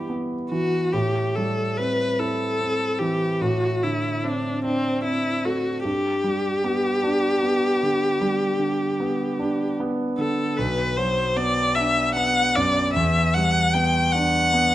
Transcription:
0.00 0.89 G2 soft
0.00 0.52 E3 soft
0.00 0.96 G3 soft
0.00 0.09 B3 soft
0.00 0.34 E4 soft
0.09 0.76 B3 soft
0.51 0.93 E3 soft
0.51 0.94 F#4 medium
0.93 3.37 A2 soft
0.93 1.37 G4 medium
1.35 2.03 G3 soft
1.35 1.79 A4 soft
1.77 2.44 C4 soft
1.77 2.21 B4 medium
2.19 2.84 E4 soft
2.19 3.00 A4 medium
2.61 3.25 C4 soft
2.99 3.41 E3 soft
2.99 3.43 G4 medium
3.41 5.82 A2 soft
3.41 3.84 F#4 medium
3.83 4.49 D3 soft
3.83 4.26 E4 medium
4.24 4.88 C4 soft
4.24 4.64 D4 medium
4.64 5.03 C4 medium
4.64 5.29 D4 soft
5.03 5.69 C4 soft
5.03 5.46 E4 medium
5.44 5.85 A3 soft
5.44 5.84 F#4 medium
5.84 8.18 G2 soft
5.84 9.75 G4 medium
6.24 6.88 G3 soft
6.64 7.28 B3 soft
7.03 7.67 D4 soft
7.43 8.06 B3 soft
7.83 8.45 D3 soft
8.21 8.84 G3 soft
8.59 9.23 D3 soft
9.00 9.64 B3 soft
9.39 10.03 D4 soft
9.80 10.43 B3 soft
10.18 10.58 D3 soft
10.18 10.58 A4 medium
10.57 12.92 B1 soft
10.57 10.98 B4 medium
10.97 11.60 F#3 soft
10.97 11.38 C5 medium
11.36 11.99 B3 soft
11.36 11.77 D5 medium
11.75 12.39 D4 soft
11.75 12.14 E5 medium
12.14 12.80 B3 soft
12.14 12.57 F#5 medium
12.55 12.96 F#2 soft
12.55 12.93 D5 medium
12.93 14.75 E2 medium
12.93 13.35 E5 medium
13.33 13.98 G3 soft
13.33 13.75 F#5 medium
13.74 14.38 B3 soft
13.74 14.14 G5 medium
14.13 14.75 D4 soft
14.13 14.75 F#5 medium
14.53 14.75 B3 soft

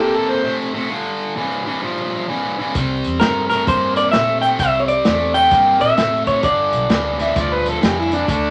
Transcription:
0.00 0.41 C3 medium
0.00 0.41 A#3 medium
0.00 0.17 G4 medium
0.00 0.40 A4 medium
0.16 0.32 A4 medium
0.31 0.54 C5 medium
0.44 0.71 C3 medium
0.44 0.71 A3 medium
0.74 0.89 C3 medium
0.74 0.89 A3 medium
0.90 1.33 G2 medium
0.90 1.33 D3 medium
1.36 1.63 G2 medium
1.36 1.63 E3 medium
1.65 1.81 G2 medium
1.65 1.81 E3 medium
1.82 2.25 G2 medium
1.82 2.25 F3 medium
2.28 2.55 G2 medium
2.28 2.55 E3 medium
2.58 2.73 G2 medium
2.58 2.74 E3 medium
2.75 3.01 C2 medium
2.75 3.18 C3 medium
2.75 3.18 G3 medium
2.75 kick loud
2.75 snare soft
2.75 closed hi-hat medium
3.04 3.19 E2 medium
3.04 closed hi-hat medium
3.20 3.62 G2 medium
3.20 3.48 C3 medium
3.20 3.48 A3 medium
3.20 3.48 A#4 medium
3.20 snare loud
3.20 closed hi-hat medium
3.50 3.66 C3 medium
3.50 3.66 A3 medium
3.50 3.67 A#4 medium
3.50 snare soft
3.50 closed hi-hat medium
3.67 4.07 G2 medium
3.67 4.10 C3 medium
3.67 4.11 A#3 medium
3.67 3.97 C5 medium
3.67 kick loud
3.67 closed hi-hat medium
3.96 4.11 D5 medium
3.96 closed hi-hat medium
4.11 4.54 A#2 medium
4.11 4.40 C3 medium
4.11 4.40 A3 medium
4.11 4.41 E5 loud
4.11 snare loud
4.11 closed hi-hat medium
4.42 4.58 C3 medium
4.42 4.58 A3 medium
4.42 4.47 G5 medium
4.42 closed hi-hat medium
4.59 4.99 C2 medium
4.59 5.02 C3 medium
4.59 5.02 G3 medium
4.59 4.81 E5 loud
4.59 kick loud
4.59 closed hi-hat medium
4.80 4.88 C#5 medium
4.88 5.36 D5 loud
4.88 closed hi-hat medium
5.05 5.46 E2 medium
5.05 5.32 C3 medium
5.05 5.32 A3 medium
5.05 snare loud
5.05 closed hi-hat medium
5.34 5.50 C3 medium
5.34 5.50 A3 medium
5.34 5.81 G5 medium
5.34 closed hi-hat medium
5.51 5.77 G2 medium
5.51 5.94 C3 medium
5.51 5.94 A#3 medium
5.51 kick loud
5.51 snare soft
5.51 closed hi-hat medium
5.81 5.95 A#2 medium
5.81 6.27 E5 medium
5.81 closed hi-hat medium
5.97 6.37 A2 medium
5.97 6.24 C3 medium
5.97 6.24 A3 medium
5.97 snare loud
5.97 closed hi-hat medium
6.26 6.42 C3 medium
6.26 6.42 A3 medium
6.26 6.43 C#5 medium
6.26 kick medium
6.26 closed hi-hat medium
6.43 6.69 G1 medium
6.43 6.86 G2 medium
6.43 6.86 D3 medium
6.43 7.78 D5 medium
6.43 kick loud
6.43 closed hi-hat medium
6.73 6.88 B1 medium
6.73 closed hi-hat medium
6.89 7.29 D2 medium
6.89 7.16 G2 medium
6.89 7.16 E3 medium
6.89 snare loud
6.89 closed hi-hat medium
7.18 7.34 G2 medium
7.18 7.34 E3 medium
7.18 7.36 E5 medium
7.18 snare soft
7.18 closed hi-hat medium
7.35 7.76 D2 medium
7.35 7.78 G2 medium
7.35 7.78 F3 medium
7.35 kick loud
7.35 snare soft
7.35 closed hi-hat medium
7.39 7.55 D5 medium
7.53 7.70 B4 medium
7.66 7.82 A4 medium
7.66 closed hi-hat medium
7.81 8.22 F2 medium
7.81 8.08 G2 medium
7.81 8.08 E3 medium
7.81 7.98 G4 medium
7.81 snare loud
7.81 closed hi-hat medium
7.99 8.16 E4 medium
8.10 8.25 G2 medium
8.10 8.26 E3 medium
8.10 8.28 D4 medium
8.10 closed hi-hat medium
8.27 8.50 D2 medium
8.27 8.50 D3 medium
8.27 8.50 A3 medium
8.27 8.50 D4 medium
8.27 kick loud
8.27 closed hi-hat medium

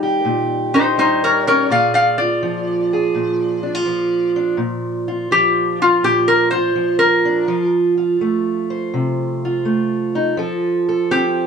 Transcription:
0.00 1.66 D#3 medium
0.00 0.97 G3 medium
0.00 0.73 D#4 medium
0.00 1.70 G4 medium
0.25 1.66 A#2 medium
0.74 0.98 D#4 medium
0.74 1.67 D#4 medium
0.74 0.97 C5 medium
0.98 1.67 G3 medium
0.98 1.20 D#4 medium
0.98 1.21 C5 medium
1.24 1.45 A#4 medium
1.24 1.46 C#5 medium
1.47 1.68 C#4 medium
1.47 1.69 A#4 medium
1.47 1.70 C#5 medium
1.70 3.14 A#2 medium
1.70 2.93 G#4 medium
1.70 1.93 D5 medium
1.70 1.94 F5 medium
1.94 2.16 D5 medium
1.94 2.17 F5 medium
2.18 3.63 F4 medium
2.18 4.30 D5 medium
2.43 3.85 F3 medium
2.93 4.57 G#4 medium
3.15 4.56 A#2 medium
3.63 3.75 D4 medium
3.75 4.58 F4 soft
3.85 5.31 F3 medium
4.36 4.56 D4 medium
4.57 6.02 A#2 medium
5.08 5.82 F4 medium
5.31 6.75 F3 medium
5.31 5.78 G4 medium
5.82 6.04 F4 medium
5.82 6.53 F4 medium
6.03 7.45 A#2 medium
6.03 6.27 G4 medium
6.28 6.50 A#4 medium
6.51 7.48 F4 medium
6.51 6.98 C5 medium
6.75 7.48 F3 medium
6.99 7.70 A#4 medium
7.25 7.45 D4 medium
7.48 10.37 F3 medium
7.48 7.97 F4 medium
7.98 9.45 F4 medium
8.21 9.64 A3 medium
8.70 10.36 C5 medium
8.94 10.36 C3 medium
9.45 11.47 F4 medium
9.65 10.35 A3 medium
10.15 10.36 D#4 medium
10.37 11.47 F3 medium
10.37 10.87 A4 medium
10.89 11.47 A4 medium
11.11 11.47 C4 medium
11.11 11.47 G4 medium

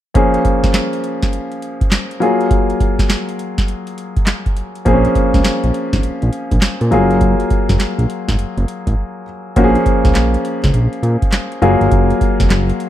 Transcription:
0.14 2.17 F3 medium
0.14 2.17 A#3 medium
0.14 2.17 C#4 medium
0.14 2.18 G#4 medium
0.14 kick loud
0.14 closed hi-hat medium
0.34 closed hi-hat medium
0.45 kick medium
0.45 closed hi-hat medium
0.63 kick loud
0.63 snare medium
0.63 closed hi-hat medium
0.74 snare loud
0.74 clap medium
0.74 closed hi-hat medium
0.93 closed hi-hat medium
1.04 closed hi-hat medium
1.22 kick medium
1.22 snare medium
1.22 closed hi-hat soft
1.33 closed hi-hat medium
1.52 closed hi-hat soft
1.62 closed hi-hat medium
1.81 kick medium
1.81 closed hi-hat medium
1.91 snare loud
1.91 clap loud
1.91 closed hi-hat medium
2.11 closed hi-hat medium
2.20 4.52 F#3 medium
2.20 4.52 A#3 medium
2.20 4.53 F4 medium
2.20 4.53 G#4 medium
2.20 closed hi-hat medium
2.41 closed hi-hat soft
2.51 kick loud
2.51 closed hi-hat medium
2.70 closed hi-hat medium
2.80 kick medium
2.80 closed hi-hat medium
2.99 kick loud
2.99 snare medium
2.99 closed hi-hat medium
3.09 snare loud
3.09 clap medium
3.09 closed hi-hat medium
3.29 closed hi-hat medium
3.39 closed hi-hat medium
3.58 kick medium
3.58 snare medium
3.58 closed hi-hat soft
3.68 closed hi-hat medium
3.87 closed hi-hat medium
3.98 closed hi-hat medium
4.17 kick medium
4.17 closed hi-hat soft
4.26 snare loud
4.26 clap medium
4.26 closed hi-hat medium
4.46 kick medium
4.46 closed hi-hat medium
4.57 closed hi-hat medium
4.75 closed hi-hat soft
4.85 5.07 A#1 loud
4.85 6.87 F3 medium
4.85 6.88 A#3 medium
4.85 4.95 C4 medium
4.85 6.88 G#4 medium
4.85 kick loud
4.85 closed hi-hat medium
4.93 6.91 C#4 medium
5.05 closed hi-hat medium
5.15 kick medium
5.15 closed hi-hat medium
5.34 5.42 C#2 medium
5.34 kick medium
5.34 snare medium
5.34 closed hi-hat medium
5.44 snare loud
5.44 clap medium
5.44 closed hi-hat medium
5.64 5.71 A#1 medium
5.64 closed hi-hat medium
5.74 closed hi-hat medium
5.93 6.01 G#1 medium
5.93 kick medium
5.93 snare medium
5.93 closed hi-hat soft
6.03 6.11 A#1 soft
6.03 closed hi-hat medium
6.22 6.30 A#1 loud
6.22 closed hi-hat medium
6.33 closed hi-hat medium
6.51 6.59 A#1 medium
6.51 kick medium
6.51 closed hi-hat medium
6.62 snare loud
6.62 clap loud
6.62 closed hi-hat medium
6.81 6.93 A#2 medium
6.81 closed hi-hat medium
6.91 7.35 F#1 loud
6.91 9.23 F#3 medium
6.91 9.23 A#3 medium
6.91 9.23 F4 medium
6.91 9.24 G#4 medium
6.91 closed hi-hat medium
7.11 closed hi-hat medium
7.21 kick loud
7.21 closed hi-hat medium
7.40 closed hi-hat medium
7.50 kick medium
7.50 closed hi-hat medium
7.69 7.77 F#1 medium
7.69 kick medium
7.69 snare medium
7.69 closed hi-hat medium
7.79 snare loud
7.79 clap medium
7.79 closed hi-hat medium
7.98 8.06 A#1 medium
7.98 closed hi-hat medium
8.10 closed hi-hat medium
8.28 8.36 G#1 medium
8.28 kick medium
8.28 snare medium
8.28 closed hi-hat soft
8.39 8.46 F#1 soft
8.39 closed hi-hat medium
8.58 8.65 F#1 loud
8.58 closed hi-hat soft
8.68 closed hi-hat medium
8.87 8.95 G#1 loud
8.87 kick medium
8.87 closed hi-hat medium
9.56 9.78 A#1 loud
9.56 10.58 F3 medium
9.56 10.58 A#3 medium
9.56 10.58 C#4 medium
9.56 9.65 F#4 medium
9.56 kick loud
9.56 closed hi-hat medium
9.64 10.62 G#4 loud
9.75 closed hi-hat medium
9.86 kick medium
9.86 closed hi-hat medium
10.05 10.12 C#2 medium
10.05 kick medium
10.05 snare medium
10.05 closed hi-hat medium
10.15 10.37 A#1 medium
10.15 snare loud
10.15 clap medium
10.15 closed hi-hat medium
10.34 closed hi-hat medium
10.45 closed hi-hat medium
10.64 10.71 C#2 medium
10.64 kick medium
10.64 snare medium
10.64 closed hi-hat soft
10.74 10.88 A#1 medium
10.74 closed hi-hat medium
10.93 closed hi-hat medium
11.03 11.17 A#2 medium
11.03 closed hi-hat medium
11.22 kick medium
11.22 closed hi-hat medium
11.32 snare loud
11.32 clap loud
11.32 closed hi-hat medium
11.52 closed hi-hat medium
11.62 11.76 F#1 loud
11.62 12.63 F#3 medium
11.62 12.64 A#3 medium
11.62 12.64 F4 medium
11.62 12.64 G#4 medium
11.62 closed hi-hat medium
11.81 11.89 G1 medium
11.81 closed hi-hat medium
11.91 12.13 F#1 medium
11.91 kick loud
11.91 closed hi-hat medium
12.10 closed hi-hat medium
12.21 kick medium
12.21 closed hi-hat medium
12.40 12.48 F1 medium
12.40 kick loud
12.40 snare medium
12.40 closed hi-hat medium
12.50 12.72 F#1 medium
12.50 snare loud
12.50 clap medium
12.50 closed hi-hat medium
12.70 closed hi-hat medium
12.80 closed hi-hat medium

